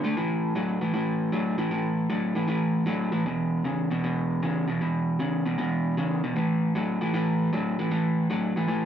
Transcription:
0.04 0.15 D3 medium
0.04 0.15 A3 medium
0.17 0.53 A2 medium
0.17 0.53 E3 medium
0.55 0.79 A2 medium
0.55 0.79 F#3 medium
0.81 0.93 A2 medium
0.81 0.93 E3 medium
0.94 1.30 A2 medium
0.94 1.30 E3 medium
1.32 1.56 A2 medium
1.32 1.56 F#3 medium
1.58 1.70 A2 medium
1.58 1.70 E3 medium
1.71 2.07 A2 medium
1.71 2.07 E3 medium
2.10 2.33 A2 medium
2.10 2.33 F#3 medium
2.35 2.46 A2 medium
2.35 2.47 E3 medium
2.48 2.84 A2 medium
2.48 2.85 E3 medium
2.86 3.10 A2 medium
2.86 3.11 F#3 medium
3.12 3.24 A2 medium
3.12 3.24 E3 medium
3.26 3.62 E2 medium
3.26 3.62 B2 medium
3.64 3.88 E2 medium
3.64 3.88 C#3 medium
3.91 4.02 E2 medium
3.91 4.03 B2 medium
4.04 4.40 E2 medium
4.04 4.40 B2 medium
4.43 4.66 E2 medium
4.43 4.66 C#3 medium
4.68 4.79 E2 medium
4.68 4.80 B2 medium
4.81 5.17 E2 medium
4.81 5.18 B2 medium
5.19 5.43 E2 medium
5.19 5.43 C#3 medium
5.46 5.57 E2 medium
5.46 5.57 B2 medium
5.58 5.95 E2 medium
5.58 5.95 B2 medium
5.97 6.21 E2 medium
5.97 6.21 C#3 medium
6.24 6.35 E2 medium
6.24 6.35 B2 medium
6.36 6.72 A2 medium
6.36 6.73 E3 medium
6.75 6.98 A2 medium
6.75 6.99 F#3 medium
7.01 7.12 A2 medium
7.01 7.13 E3 medium
7.14 7.50 A2 medium
7.14 7.50 E3 loud
7.53 7.76 A2 medium
7.53 7.76 F#3 medium
7.79 7.90 A2 medium
7.79 7.90 E3 medium
7.91 8.27 A2 medium
7.91 8.27 E3 medium
8.30 8.53 A2 medium
8.30 8.54 F#3 medium
8.56 8.66 A2 medium
8.56 8.67 E3 medium
8.68 8.85 A2 medium
8.68 8.85 E3 medium

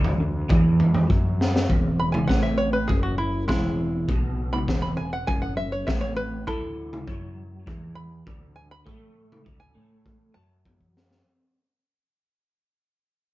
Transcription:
0.00 0.19 D2 medium
0.00 0.19 D3 loud
0.05 floor tom medium
0.20 0.48 D2 medium
0.20 0.44 D3 medium
0.49 1.06 E2 medium
0.49 1.10 E3 medium
0.49 kick loud
0.49 floor tom medium
0.80 floor tom medium
0.94 floor tom medium
1.10 1.66 F#2 medium
1.10 1.69 F#3 medium
1.10 kick loud
1.41 snare medium
1.56 snare medium
1.69 2.26 E1 medium
1.69 2.29 E2 loud
1.69 kick medium
2.00 2.12 B5 medium
2.12 2.27 G#5 medium
2.12 mid tom medium
2.28 2.86 A1 medium
2.28 2.89 A2 medium
2.28 2.42 F#5 medium
2.28 kick medium
2.28 snare medium
2.43 2.58 E5 medium
2.58 2.73 C#5 medium
2.73 2.88 B4 medium
2.88 3.46 F#1 medium
2.88 3.48 F#2 medium
2.88 3.02 G#4 medium
2.88 kick loud
3.03 3.18 F#4 medium
3.18 3.47 E4 medium
3.48 4.05 E1 medium
3.48 4.08 E2 medium
3.48 4.05 G#3 medium
3.48 4.07 E4 medium
3.48 kick loud
3.48 snare medium
4.08 4.65 B1 medium
4.08 4.68 B2 loud
4.08 kick loud
4.53 4.67 B5 medium
4.53 mid tom medium
4.68 4.97 E1 medium
4.68 4.97 E2 medium
4.68 kick loud
4.68 snare medium
4.82 4.97 B5 medium
4.97 5.27 E1 medium
4.97 5.22 E2 medium
4.97 5.12 G#5 medium
5.13 5.27 F#5 medium
5.27 5.84 F#1 medium
5.27 5.87 F#2 medium
5.27 5.42 G#5 medium
5.27 kick loud
5.42 5.57 F#5 medium
5.57 5.72 E5 medium
5.72 5.87 C#5 medium
5.87 6.44 A1 medium
5.87 6.46 A2 medium
5.87 6.01 E5 medium
5.87 kick loud
5.87 snare medium
6.01 6.16 C#5 medium
6.16 6.46 B4 medium
6.47 7.04 D2 medium
6.47 7.07 D3 loud
6.47 7.63 E4 medium
6.47 7.63 A4 loud
6.47 kick loud
6.93 mid tom medium
7.07 7.63 F#2 medium
7.07 7.66 F#3 medium
7.07 kick loud
7.67 8.23 E2 medium
7.67 8.26 E3 medium
7.67 kick loud
7.95 8.54 B5 medium
8.27 8.83 D2 medium
8.27 8.86 D3 medium
8.27 kick loud
8.56 8.70 G#5 medium
8.71 9.58 B5 medium
8.86 9.42 A2 medium
8.86 9.45 A3 loud
8.86 kick medium
9.32 mid tom medium
9.45 9.74 D2 medium
9.45 9.75 D3 medium
9.45 kick loud
9.60 10.33 G#5 medium
9.75 10.32 A2 medium
9.75 10.34 A3 medium
10.06 kick loud
10.34 11.21 F#2 medium
10.34 11.23 F#3 medium
10.34 11.22 A5 medium
10.66 kick medium
10.66 high tom soft
10.81 kick medium
10.97 snare medium
11.11 snare medium

